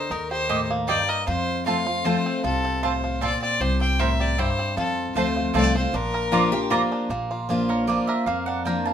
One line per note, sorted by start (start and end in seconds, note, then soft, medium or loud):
0.00 0.11 A#4 medium
0.00 0.12 C5 medium
0.10 0.99 D#2 medium
0.10 0.85 D#3 medium
0.10 0.48 D#4 medium
0.10 0.30 A#4 medium
0.31 0.85 G4 medium
0.31 0.67 C5 loud
0.49 0.87 A2 medium
0.49 0.59 A#3 medium
0.49 1.05 D#4 medium
0.49 0.59 G4 medium
0.49 0.59 D#5 loud
0.49 0.59 G5 medium
0.70 1.24 A#3 medium
0.87 1.26 G2 medium
0.87 0.98 A#3 loud
0.87 0.98 G4 medium
0.87 1.27 G4 medium
0.87 1.10 D5 loud
0.87 0.98 D#5 loud
0.87 0.98 G5 loud
1.09 1.27 A#4 medium
1.09 1.27 D#5 medium
1.27 2.02 F2 medium
1.27 2.16 F2 medium
1.27 1.65 F4 medium
1.27 1.64 C5 loud
1.66 1.86 F3 medium
1.66 1.86 A3 medium
1.66 1.76 C4 medium
1.66 1.87 C4 medium
1.66 1.85 F4 medium
1.66 1.76 F4 medium
1.66 1.85 F4 loud
1.66 1.76 C5 medium
1.66 2.07 F5 medium
1.66 1.76 A5 loud
1.86 2.05 C4 soft
1.86 2.04 F4 medium
2.05 2.42 F3 loud
2.05 2.42 A3 medium
2.05 2.15 C4 medium
2.05 2.43 C4 medium
2.05 2.15 F4 loud
2.05 2.43 F4 medium
2.05 2.44 C5 loud
2.05 2.15 C5 loud
2.05 2.15 A5 loud
2.26 2.64 C4 medium
2.44 3.32 C2 medium
2.44 3.18 C3 medium
2.44 2.82 F4 medium
2.44 2.85 A4 loud
2.65 3.42 C4 medium
2.83 3.20 A2 medium
2.83 2.92 C4 medium
2.83 2.92 F4 medium
2.83 3.03 F4 medium
2.83 2.93 C5 medium
2.83 3.22 C5 medium
2.83 2.93 A5 medium
3.04 3.22 F4 medium
3.21 3.59 A#2 medium
3.21 3.31 C4 loud
3.21 3.31 F4 medium
3.21 3.61 F4 medium
3.21 3.31 C5 loud
3.21 3.41 D5 loud
3.21 3.31 A5 loud
3.42 3.81 C4 medium
3.42 3.62 D5 loud
3.60 4.49 C2 medium
3.60 4.35 C3 medium
3.60 4.16 G4 medium
3.60 3.81 C5 loud
3.81 4.35 C4 medium
3.81 4.01 G5 loud
3.99 4.37 A2 medium
3.99 4.09 C4 medium
3.99 4.09 E4 medium
3.99 4.55 A#4 medium
3.99 4.09 C5 loud
3.99 4.22 E5 loud
3.99 4.09 G5 loud
4.20 4.74 G4 medium
4.20 4.41 D5 loud
4.38 4.75 G2 medium
4.38 4.48 C4 medium
4.38 4.77 E4 medium
4.38 4.48 E4 medium
4.38 4.48 C5 loud
4.38 4.77 C5 loud
4.38 4.48 G5 loud
4.59 4.77 C4 medium
4.77 5.06 F2 medium
4.77 5.51 F2 medium
4.77 5.17 F4 medium
4.77 5.14 A4 loud
5.15 5.49 D2 medium
5.15 5.53 F3 medium
5.15 5.53 A3 medium
5.15 5.25 C4 medium
5.15 5.53 C4 medium
5.15 5.25 F4 medium
5.15 5.36 F4 medium
5.15 5.54 F4 medium
5.15 5.52 C5 medium
5.15 5.26 C5 loud
5.15 5.26 A5 loud
5.36 5.75 F4 medium
5.54 5.87 C2 medium
5.54 5.74 F3 medium
5.54 5.74 A3 loud
5.54 5.64 A#3 medium
5.54 5.64 C4 medium
5.54 5.75 C4 loud
5.54 5.64 F4 loud
5.54 5.74 F4 medium
5.54 5.64 C5 loud
5.54 5.74 D5 loud
5.54 5.64 A5 loud
5.64 5.94 C4 medium
5.75 5.94 C4 soft
5.75 5.93 F4 medium
5.75 6.53 F4 medium
5.75 5.97 C5 medium
5.93 6.82 A#1 medium
5.93 6.68 A#2 medium
5.93 6.49 D4 medium
5.93 6.72 A#4 loud
6.14 6.68 A#4 medium
6.32 6.52 F3 medium
6.32 6.42 A#3 loud
6.32 6.88 A#3 medium
6.32 6.52 A#3 medium
6.32 6.52 D4 loud
6.32 6.42 F4 loud
6.32 6.51 F4 loud
6.32 6.42 D5 medium
6.32 6.42 A#5 loud
6.52 6.71 D4 soft
6.52 6.71 F4 medium
6.52 7.07 F4 medium
6.52 6.70 G4 loud
6.70 7.08 F3 medium
6.70 6.80 A#3 loud
6.70 7.08 A#3 medium
6.70 7.09 D4 medium
6.70 6.80 F4 medium
6.70 7.09 F4 medium
6.70 7.10 A#4 medium
6.70 6.81 D5 medium
6.70 6.81 A#5 loud
6.92 7.10 D4 medium
7.09 7.98 A#1 medium
7.09 7.84 A#2 medium
7.09 7.49 A#3 medium
7.31 8.71 F4 medium
7.49 7.86 F3 medium
7.49 7.88 A#3 medium
7.49 7.87 A#3 medium
7.49 7.87 D4 loud
7.49 7.87 F4 loud
7.69 8.08 A#4 medium
7.69 7.87 C#5 medium
7.87 8.25 F3 medium
7.87 8.25 A#3 medium
7.87 8.27 A#3 medium
7.87 8.25 D4 medium
7.87 8.26 F4 loud
7.87 8.08 D5 medium
8.07 8.66 A#4 medium
8.07 8.26 E5 medium
8.26 8.93 F2 medium
8.26 8.93 A#3 medium
8.26 8.46 F5 medium
8.46 8.93 D4 medium
8.46 8.65 F#5 medium
8.65 8.93 F3 medium
8.65 8.93 A#3 medium
8.65 8.93 D4 loud
8.65 8.93 F4 medium
8.65 8.93 A#4 medium
8.65 8.85 G5 medium
8.85 8.93 F4 medium
8.85 8.93 A5 medium